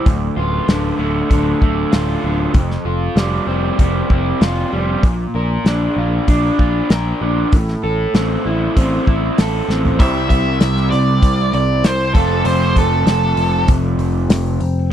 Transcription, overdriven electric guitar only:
0, 0, Header, 1, 2, 480
1, 0, Start_track
1, 0, Tempo, 621118
1, 53, Time_signature, 4, 2, 24, 8
1, 5333, Tempo, 617284
1, 11573, End_track
2, 0, Start_track
2, 0, Title_t, "Overdriven electric guitar"
2, 0, Program_c, 0, 29
2, 45, Note_on_c, 0, 38, 55
2, 284, Note_on_c, 0, 65, 62
2, 523, Note_on_c, 0, 50, 56
2, 762, Note_on_c, 0, 57, 62
2, 1001, Note_off_c, 0, 50, 0
2, 1010, Note_on_c, 0, 50, 58
2, 1240, Note_off_c, 0, 57, 0
2, 1250, Note_on_c, 0, 57, 69
2, 1251, Note_off_c, 0, 38, 0
2, 1478, Note_off_c, 0, 65, 0
2, 1481, Note_on_c, 0, 65, 61
2, 1713, Note_off_c, 0, 50, 0
2, 1722, Note_on_c, 0, 50, 56
2, 1968, Note_on_c, 0, 41, 67
2, 1970, Note_off_c, 0, 50, 0
2, 1974, Note_off_c, 0, 57, 0
2, 2205, Note_off_c, 0, 65, 0
2, 2208, Note_on_c, 0, 65, 60
2, 2453, Note_on_c, 0, 55, 61
2, 2687, Note_on_c, 0, 60, 67
2, 2923, Note_off_c, 0, 55, 0
2, 2933, Note_on_c, 0, 55, 58
2, 3167, Note_off_c, 0, 60, 0
2, 3173, Note_off_c, 0, 41, 0
2, 3176, Note_on_c, 0, 60, 63
2, 3400, Note_off_c, 0, 65, 0
2, 3409, Note_on_c, 0, 65, 67
2, 3640, Note_off_c, 0, 55, 0
2, 3649, Note_on_c, 0, 55, 60
2, 3889, Note_on_c, 0, 46, 64
2, 3893, Note_off_c, 0, 55, 0
2, 3893, Note_off_c, 0, 65, 0
2, 3897, Note_off_c, 0, 60, 0
2, 4136, Note_on_c, 0, 70, 64
2, 4378, Note_on_c, 0, 62, 51
2, 4624, Note_on_c, 0, 65, 57
2, 4845, Note_off_c, 0, 62, 0
2, 4854, Note_on_c, 0, 62, 57
2, 5080, Note_off_c, 0, 65, 0
2, 5090, Note_on_c, 0, 65, 68
2, 5092, Note_off_c, 0, 46, 0
2, 5332, Note_off_c, 0, 70, 0
2, 5341, Note_on_c, 0, 70, 71
2, 5569, Note_off_c, 0, 62, 0
2, 5579, Note_on_c, 0, 62, 56
2, 5814, Note_off_c, 0, 65, 0
2, 5818, Note_off_c, 0, 62, 0
2, 5820, Note_off_c, 0, 70, 0
2, 5820, Note_on_c, 0, 45, 58
2, 6059, Note_on_c, 0, 69, 67
2, 6301, Note_on_c, 0, 60, 55
2, 6544, Note_on_c, 0, 64, 64
2, 6771, Note_off_c, 0, 60, 0
2, 6781, Note_on_c, 0, 60, 63
2, 7015, Note_off_c, 0, 64, 0
2, 7021, Note_off_c, 0, 45, 0
2, 7024, Note_on_c, 0, 64, 60
2, 7256, Note_off_c, 0, 69, 0
2, 7265, Note_on_c, 0, 69, 64
2, 7504, Note_off_c, 0, 60, 0
2, 7513, Note_on_c, 0, 60, 58
2, 7735, Note_on_c, 0, 48, 78
2, 7738, Note_off_c, 0, 60, 0
2, 7739, Note_on_c, 0, 55, 71
2, 7740, Note_off_c, 0, 64, 0
2, 7743, Note_off_c, 0, 69, 0
2, 7748, Note_on_c, 0, 60, 84
2, 7749, Note_on_c, 0, 64, 77
2, 7751, Note_on_c, 0, 67, 84
2, 7758, Note_on_c, 0, 72, 79
2, 9401, Note_off_c, 0, 48, 0
2, 9405, Note_off_c, 0, 55, 0
2, 9408, Note_on_c, 0, 41, 78
2, 9410, Note_off_c, 0, 60, 0
2, 9410, Note_off_c, 0, 64, 0
2, 9410, Note_on_c, 0, 48, 68
2, 9411, Note_off_c, 0, 67, 0
2, 9413, Note_on_c, 0, 53, 77
2, 9417, Note_on_c, 0, 57, 70
2, 9420, Note_off_c, 0, 72, 0
2, 9422, Note_on_c, 0, 60, 79
2, 9423, Note_on_c, 0, 65, 91
2, 11315, Note_off_c, 0, 41, 0
2, 11316, Note_off_c, 0, 48, 0
2, 11318, Note_off_c, 0, 53, 0
2, 11320, Note_off_c, 0, 57, 0
2, 11323, Note_off_c, 0, 65, 0
2, 11573, Note_off_c, 0, 60, 0
2, 11573, End_track
0, 0, End_of_file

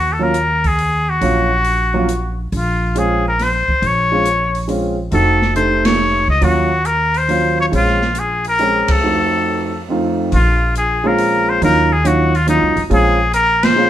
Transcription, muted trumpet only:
0, 0, Header, 1, 2, 480
1, 0, Start_track
1, 0, Key_signature, -5, "minor"
1, 0, Tempo, 432900
1, 1341, Time_signature, 3, 2, 24, 8
1, 15410, End_track
2, 0, Start_track
2, 0, Title_t, "Muted trumpet"
2, 0, Program_c, 0, 59
2, 0, Note_on_c, 0, 66, 83
2, 144, Note_on_c, 0, 69, 65
2, 161, Note_off_c, 0, 66, 0
2, 257, Note_on_c, 0, 70, 89
2, 273, Note_off_c, 0, 69, 0
2, 746, Note_on_c, 0, 68, 86
2, 763, Note_off_c, 0, 70, 0
2, 1216, Note_on_c, 0, 66, 89
2, 1233, Note_off_c, 0, 68, 0
2, 2646, Note_off_c, 0, 66, 0
2, 2836, Note_on_c, 0, 65, 84
2, 3309, Note_on_c, 0, 68, 81
2, 3326, Note_off_c, 0, 65, 0
2, 3614, Note_off_c, 0, 68, 0
2, 3638, Note_on_c, 0, 70, 84
2, 3803, Note_on_c, 0, 72, 96
2, 3820, Note_off_c, 0, 70, 0
2, 4288, Note_on_c, 0, 73, 101
2, 4305, Note_off_c, 0, 72, 0
2, 5222, Note_off_c, 0, 73, 0
2, 5696, Note_on_c, 0, 69, 92
2, 6134, Note_off_c, 0, 69, 0
2, 6165, Note_on_c, 0, 72, 89
2, 6494, Note_on_c, 0, 73, 101
2, 6511, Note_off_c, 0, 72, 0
2, 6969, Note_off_c, 0, 73, 0
2, 6982, Note_on_c, 0, 75, 96
2, 7141, Note_on_c, 0, 66, 93
2, 7157, Note_off_c, 0, 75, 0
2, 7607, Note_on_c, 0, 70, 89
2, 7624, Note_off_c, 0, 66, 0
2, 7954, Note_on_c, 0, 72, 94
2, 7971, Note_off_c, 0, 70, 0
2, 8420, Note_off_c, 0, 72, 0
2, 8431, Note_on_c, 0, 73, 88
2, 8495, Note_off_c, 0, 73, 0
2, 8608, Note_on_c, 0, 65, 89
2, 9086, Note_on_c, 0, 68, 82
2, 9102, Note_off_c, 0, 65, 0
2, 9388, Note_off_c, 0, 68, 0
2, 9403, Note_on_c, 0, 70, 93
2, 9885, Note_on_c, 0, 69, 88
2, 9902, Note_off_c, 0, 70, 0
2, 10978, Note_off_c, 0, 69, 0
2, 11470, Note_on_c, 0, 65, 88
2, 11900, Note_off_c, 0, 65, 0
2, 11949, Note_on_c, 0, 68, 84
2, 12277, Note_on_c, 0, 70, 93
2, 12293, Note_off_c, 0, 68, 0
2, 12747, Note_on_c, 0, 72, 93
2, 12763, Note_off_c, 0, 70, 0
2, 12887, Note_off_c, 0, 72, 0
2, 12909, Note_on_c, 0, 70, 95
2, 13226, Note_on_c, 0, 68, 83
2, 13242, Note_off_c, 0, 70, 0
2, 13383, Note_on_c, 0, 66, 91
2, 13399, Note_off_c, 0, 68, 0
2, 13703, Note_on_c, 0, 65, 84
2, 13719, Note_off_c, 0, 66, 0
2, 13843, Note_off_c, 0, 65, 0
2, 13857, Note_on_c, 0, 63, 84
2, 14217, Note_off_c, 0, 63, 0
2, 14346, Note_on_c, 0, 68, 96
2, 14772, Note_off_c, 0, 68, 0
2, 14794, Note_on_c, 0, 70, 101
2, 15124, Note_on_c, 0, 72, 103
2, 15141, Note_off_c, 0, 70, 0
2, 15410, Note_off_c, 0, 72, 0
2, 15410, End_track
0, 0, End_of_file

